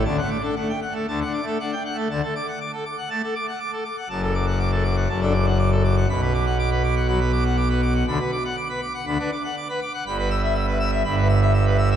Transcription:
<<
  \new Staff \with { instrumentName = "Pipe organ" } { \time 4/4 \key d \major \tempo 4 = 121 a''16 fis''16 d'''16 a'16 fis''16 g''16 fis''16 a'16 a''16 fis''16 d'''16 a'16 fis''16 g''16 fis''16 a'16 | a''16 a'16 d'''16 fis''16 d'''16 a'16 d'''16 fis''16 a''16 a'16 d'''16 fis''16 d'''16 a'16 d'''16 fis''16 | a''16 a'16 d'''16 fis''16 d'''16 a'16 d'''16 fis''16 a''16 a'16 d'''16 fis''16 d'''16 a'16 d'''16 fis''16 | b''16 b'16 d'''16 fis''16 d'''16 b'16 d'''16 fis''16 b''16 b'16 d'''16 fis''16 d'''16 b'16 d'''16 fis''16 |
b''16 b'16 d'''16 fis''16 d'''16 b'16 d'''16 fis''16 b''16 b'16 d'''16 fis''16 d'''16 b'16 d'''16 fis''16 | b''16 b'16 e'''16 e''16 e'''16 b'16 e'''16 e''16 b''16 b'16 e'''16 e''16 e'''16 b'16 e'''16 e''16 | }
  \new Staff \with { instrumentName = "Pipe organ" } { \clef bass \time 4/4 \key d \major << { \tuplet 3/2 { d8 a8 d'8 a8 r8 a8 d8 d'8 a8 d'8 r8 a8 } | d16 r4. r16 a16 r4. r16 | fis,2 fis,16 d'16 r4. | b,2 fis16 r4. r16 |
d16 r4. r16 d16 d'16 r4. | g,2 g,2 | } \\ { d,8 r4. d,8 r4. | d,16 r2. r8. | fis,,2 fis,,2 | b,,1 |
d,16 r4. r16 d,16 r4. r16 | g,,2 g,,2 | } >> }
>>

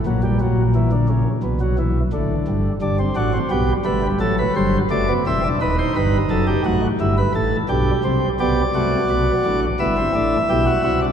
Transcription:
<<
  \new Staff \with { instrumentName = "Pipe organ" } { \time 4/4 \key e \minor \tempo 4 = 86 << { r1 | r1 | r1 | d''2 e''2 | } \\ { r1 | r8 fis'8 g'8 b'8 a'16 b'16 c''8 d''8 e''8 | b'16 c''16 b'8 a'16 g'16 fis'8 r16 b'16 a'8 g'4 | g'8 fis'4. e'4 g'16 fis'16 e'16 d'16 | } >> }
  \new Staff \with { instrumentName = "Pipe organ" } { \clef bass \time 4/4 \key e \minor << { fis16 g16 fis8 e16 d16 cis8 r16 fis16 e8 d4 | d'16 c'16 d'16 c'16 b8 a16 g16 fis4 a16 b16 c'16 d'16 | dis'2 e'4 d'8 c'8 | b8 a8 b8 d'8 b16 c'16 d'8 e'8 fis'8 | } \\ { <ais,, ais,>2 <b,, b,>4 <a,, a,>8 <g,, g,>8 | <g,, g,>8 <a,, a,>8 <b,, b,>8 <g,, g,>8 <a,, a,>8 <g,, g,>8 <fis,, fis,>8 <e,, e,>8 | <dis,, dis,>8 <g,, g,>8 <fis,, fis,>8 <a,, a,>8 <g,, g,>8 <a,, a,>8 <b,, b,>8 <c, c>8 | <b,, b,>8 <c, c>8 <b,, b,>8 <a,, a,>8 <g,, g,>8 <a,, a,>8 <b,, b,>8 <c, c>8 | } >> }
>>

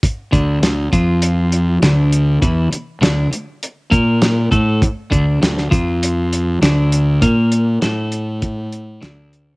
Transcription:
<<
  \new Staff \with { instrumentName = "Clean electric guitar" } { \clef bass \time 4/4 \key d \minor \tempo 4 = 100 r8 d8 d8 f4. d4 | e8 r8 d8 r4 bes4 a8 | r8 d8 d8 f4. d4 | bes4 a2 d4 | }
  \new Staff \with { instrumentName = "Fingered electric bass" } { \clef bass \time 4/4 \key d \minor r8 d,8 d,8 f,4. d,4 | e,8 r8 d,8 r4 bes,4 a,8 | r8 d,8 d,8 f,4. d,4 | bes,4 a,2 d,4 | }
  \new DrumStaff \with { instrumentName = "Drums" } \drummode { \time 4/4 <hh bd>8 <hh bd>8 <hh sn>8 <hh bd>8 hh8 hh8 <hh sn>8 hh8 | <hh bd>8 hh8 <hh sn>8 hh8 hh8 <hh bd>8 <hh sn>8 <hh bd>8 | <hh bd>8 <hh bd>8 <hh sn>16 sn16 <hh bd>8 hh8 hh8 <hh sn>8 hh8 | <hh bd>8 hh8 <hh sn>8 hh8 <hh bd>8 hh8 <hh sn>8 hh8 | }
>>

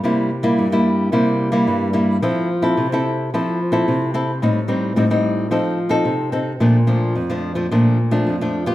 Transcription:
\new Staff \with { instrumentName = "Nylon-string guitar" } { \time 4/4 \key f \major \tempo 4 = 109 << { <g bes e'>8 r16 <g bes e'>8 <g bes e'>8. <g bes e'>8. <g bes e'>8. <g bes e'>8 | <c' e' a'>8 r16 <c' e' a'>8 <c' e' a'>8. <c' e' a'>8 r16 <c' e' a'>8. <c' e' a'>16 r16 | <g c' ees'>16 r16 <g c' ees'>8 <g c' ees'>16 <g c' ees'>8. <c' ees' a'>8 r16 <c' ees' a'>8. <c' ees' a'>16 r16 | \key bes \major <f a d'>16 r16 <f a d'>8 r16 <f a d'>8 <f a d'>16 <f a d'>8 r16 <f a d'>8 <f a d'>8 <ces' f' g'>16 | } \\ { c4 g,4 c4 g,4 | f4 c4 f4 c4 | a,4 a,4 f4 c4 | bes,4 f,4 bes,4 f,4 | } >> }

